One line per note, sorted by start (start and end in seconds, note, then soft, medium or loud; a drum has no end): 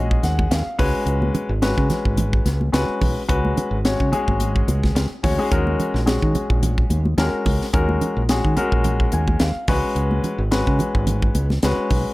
0.00 0.17 A#1 loud
0.00 0.61 G#3 medium
0.00 0.61 C#4 medium
0.00 0.61 F#4 medium
0.00 0.61 G#4 loud
0.00 0.22 D#5 medium
0.11 kick medium
0.23 0.46 D#2 medium
0.23 0.49 F#5 medium
0.23 snare soft
0.23 closed hi-hat medium
0.23 high conga medium
0.39 kick medium
0.39 high conga medium
0.51 0.64 D#2 medium
0.51 0.77 F5 medium
0.51 snare loud
0.51 closed hi-hat medium
0.66 muted fingered electric bass stroke soft
0.78 0.92 C#2 medium
0.78 1.49 G#3 medium
0.78 1.49 C#4 medium
0.78 1.49 F#4 medium
0.78 1.50 B4 loud
0.78 1.05 G#5 medium
0.78 kick loud
0.78 open hi-hat medium
1.06 1.29 C#2 medium
1.06 closed hi-hat medium
1.22 high conga medium
1.35 closed hi-hat medium
1.35 low conga medium
1.49 1.73 G#1 medium
1.62 2.55 G#3 medium
1.62 2.55 C#4 medium
1.62 2.55 F#4 medium
1.62 2.56 B4 medium
1.62 snare loud
1.62 closed hi-hat medium
1.77 1.88 C#3 medium
1.77 kick medium
1.90 snare soft
1.90 closed hi-hat medium
1.90 low conga medium
2.05 2.39 G#1 medium
2.05 kick medium
2.17 closed hi-hat medium
2.17 high conga medium
2.17 low conga medium
2.33 kick medium
2.45 2.69 C#2 medium
2.45 snare soft
2.45 closed hi-hat medium
2.45 high conga medium
2.61 high conga medium
2.72 2.86 C#2 medium
2.72 3.20 G#3 medium
2.72 3.20 C#4 medium
2.72 3.21 F#4 medium
2.72 3.20 B4 medium
2.72 snare loud
2.72 closed hi-hat medium
2.89 muted fingered electric bass stroke soft
3.01 3.14 B1 medium
3.01 kick medium
3.01 open hi-hat medium
3.01 low conga medium
3.28 3.52 C#2 medium
3.28 3.76 G#3 medium
3.28 3.76 C#4 medium
3.28 3.76 F#4 medium
3.28 3.76 B4 medium
3.28 kick loud
3.28 closed hi-hat medium
3.45 high conga medium
3.57 closed hi-hat medium
3.57 low conga medium
3.71 3.95 G#1 medium
3.85 4.08 G#3 medium
3.85 4.08 C#4 medium
3.85 4.08 F#4 medium
3.85 4.09 C#5 medium
3.85 snare loud
3.85 closed hi-hat medium
4.00 4.11 C#3 medium
4.00 kick medium
4.12 5.05 G#3 medium
4.12 5.06 C#4 medium
4.12 5.06 F#4 medium
4.12 5.06 G#4 loud
4.12 closed hi-hat medium
4.12 low conga medium
4.28 4.61 G#1 medium
4.28 kick medium
4.28 high conga medium
4.40 closed hi-hat medium
4.40 high conga medium
4.56 kick medium
4.68 4.91 C#2 medium
4.68 closed hi-hat medium
4.68 high conga medium
4.83 kick medium
4.83 snare soft
4.83 high conga medium
4.95 5.08 C#2 medium
4.95 snare loud
4.95 closed hi-hat medium
5.23 5.36 D2 medium
5.23 5.36 G#3 medium
5.23 5.36 C#4 medium
5.23 5.36 F#4 medium
5.23 5.36 C#5 medium
5.23 kick medium
5.23 snare soft
5.23 open hi-hat medium
5.23 low conga medium
5.38 5.49 G#3 medium
5.38 5.49 C#4 medium
5.38 5.49 F#4 medium
5.38 5.49 G#4 medium
5.51 5.75 D#2 medium
5.51 5.98 G#3 medium
5.51 5.98 C#4 medium
5.51 5.99 F#4 medium
5.51 5.99 A#4 medium
5.51 kick loud
5.51 closed hi-hat medium
5.67 high conga medium
5.80 closed hi-hat medium
5.80 low conga medium
5.94 6.17 A#1 medium
5.94 snare soft
6.06 7.00 G#3 medium
6.06 7.00 C#4 medium
6.06 7.00 F#4 medium
6.06 7.00 G#4 medium
6.06 snare loud
6.06 closed hi-hat medium
6.22 6.33 D#3 medium
6.22 kick medium
6.35 closed hi-hat medium
6.35 low conga medium
6.50 6.84 A#1 medium
6.50 kick medium
6.63 closed hi-hat medium
6.63 high conga medium
6.63 low conga medium
6.78 kick medium
6.90 7.13 D#2 medium
6.90 closed hi-hat medium
6.90 high conga medium
7.05 high conga medium
7.18 7.30 D#2 loud
7.18 7.65 G#3 medium
7.18 7.65 C#4 medium
7.18 7.65 F#4 medium
7.18 7.65 A#4 medium
7.18 snare loud
7.18 closed hi-hat medium
7.46 7.58 C#2 medium
7.46 kick medium
7.46 open hi-hat medium
7.46 low conga medium
7.61 snare soft
7.73 7.97 D#2 loud
7.73 8.20 G#3 medium
7.73 8.21 C#4 medium
7.73 8.21 F#4 medium
7.73 8.21 A#4 medium
7.73 kick loud
7.73 closed hi-hat medium
7.89 high conga medium
8.01 closed hi-hat medium
8.01 low conga medium
8.16 8.40 A#1 medium
8.29 8.53 G#3 medium
8.29 8.53 C#4 medium
8.29 8.53 F#4 medium
8.29 8.53 G#4 medium
8.29 snare loud
8.29 closed hi-hat medium
8.45 8.55 D#3 medium
8.45 kick medium
8.56 9.50 G#3 medium
8.56 9.50 C#4 medium
8.56 9.51 F#4 medium
8.56 9.50 A#4 medium
8.56 closed hi-hat medium
8.56 low conga medium
8.72 9.06 A#1 medium
8.72 kick medium
8.84 closed hi-hat medium
8.84 high conga medium
8.84 low conga medium
9.00 kick medium
9.12 9.36 D#2 medium
9.12 9.39 G#5 medium
9.12 closed hi-hat medium
9.12 high conga medium
9.28 kick medium
9.28 high conga medium
9.40 9.53 D#2 medium
9.40 9.66 F5 medium
9.40 snare loud
9.40 closed hi-hat medium
9.56 muted fingered electric bass stroke soft
9.68 9.81 C#2 medium
9.68 10.39 G#3 medium
9.68 10.39 C#4 medium
9.68 10.39 F#4 medium
9.68 10.39 B4 loud
9.68 9.94 C#5 medium
9.68 kick loud
9.68 snare soft
9.68 open hi-hat medium
9.68 low conga medium
9.95 10.19 C#2 medium
9.95 closed hi-hat medium
10.11 high conga medium
10.24 closed hi-hat soft
10.24 low conga medium
10.38 10.62 G#1 medium
10.51 11.45 G#3 medium
10.51 11.45 C#4 medium
10.51 11.45 F#4 medium
10.51 11.45 B4 medium
10.51 snare loud
10.51 closed hi-hat medium
10.67 10.78 C#3 medium
10.67 kick medium
10.79 closed hi-hat medium
10.79 low conga medium
10.95 11.28 G#1 medium
10.95 kick medium
11.07 closed hi-hat medium
11.07 high conga medium
11.07 low conga medium
11.22 kick medium
11.35 11.58 C#2 medium
11.35 closed hi-hat medium
11.35 high conga medium
11.50 snare soft
11.50 high conga medium
11.63 11.76 C#2 medium
11.63 12.10 G#3 medium
11.63 12.11 C#4 medium
11.63 12.11 F#4 medium
11.63 12.11 B4 medium
11.63 snare loud
11.63 closed hi-hat medium
11.78 muted fingered electric bass stroke soft
11.90 12.03 B1 medium
11.90 kick medium
11.90 open hi-hat medium
11.90 low conga medium